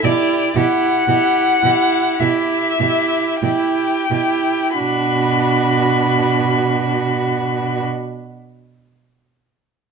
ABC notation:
X:1
M:4/4
L:1/8
Q:1/4=47
K:Bm
V:1 name="Violin"
d f3 e2 g2 | b8 |]
V:2 name="Violin"
G G G G G G G G | F8 |]
V:3 name="Viola"
E E E E E E E E | D8 |]
V:4 name="Cello" clef=bass
B,, B,, B,, B,, B,, B,, B,, B,, | B,,8 |]